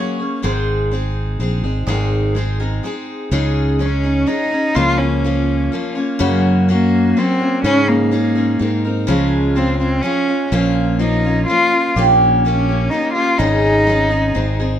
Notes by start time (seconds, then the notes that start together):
Already playing: F#3 A#3 C#4 G#4 C#5
0.19 A#3 C#4 G#4
0.42 G#1 G#2 D#3 G#3 C4 D#4 G#4 C5
0.91 G#3 C4 D#4 G#4
1.39 A#1 G#3 C4 D#4 G#4
1.64 G#1 G#3 C4 D#4 G#4
1.87 G#1 G#2 D#3 G#3 C4 D#4 G#4
2.35 G#3 C4 D#4 G#4 C5
2.60 G#3 C4 D#4 G#4 A#4
2.83 G#3 C4 D#4 G#4
3.31 C#2 C#3 G#3 C#4 D#4 G#4
3.79 G#3 C#4 D#4 G#4
4.03 C#4 D#4 G#4
4.27 G#3 C#4 D#4 G#4
4.50 C#4 D#4 G#4
4.75 C#2 C#3 F3 A#3 C#4 F4
4.98 C#4
5.24 F3 A#3 C#4 F4
5.72 F3 A#3 C#4 F4
5.95 A#3 C#4 F4
6.19 F#2 C#3 F#3 A#3 C#4 F#4
6.69 F#3 A#3 C#4 F#4
7.17 F#3 A#3 C4 C#4 F#4
7.40 F#3 A#3 C#4 F#4
7.64 G#2 C#3 G#3 C#4 D#4 G#4
7.88 A#3
8.11 G#3 C#4 D#4 G#4
8.35 G#3 C#4 D#4 G#4
8.59 G#2 G#3 C4 D#4 A#4
8.85 C4 D#4 A#4
9.07 C#2 C#3 F3 G#3 C#4 F4 A#4
9.55 F3 G#3 C4 C#4 F4
9.78 C4 C#4 F4
9.82 G#3
10.01 F3 G#3 C#4 G#4
10.05 F4
10.28 G#3 C#4 F4
10.52 A#1 A#2 F3 A#3 C#4 F4
10.99 F3 A#3 C#4 D#4 F4
11.24 A#3 C#4 F4
11.47 F3 A#3 C#4 F4
11.72 A#3 C#4 F4
11.96 A#1 A#2 D#3 A#3 C#4 G4
12.44 D#3 A#3 C#4
12.48 G4
12.69 A#3 C#4 G4
12.90 D#3 A#3 D#4
12.94 C#4 G4
13.13 C#4 F4 G4
13.18 A#3
13.38 G#1 G#2 C#3 G#3 C#4 D#4 G#4
13.87 G#3 C#4 D#4 G#4
14.10 G#3 C#4 D#4 G#4
14.34 G#1 G#3 C4 D#4 G#4
14.60 G#3 C4 D#4 G#4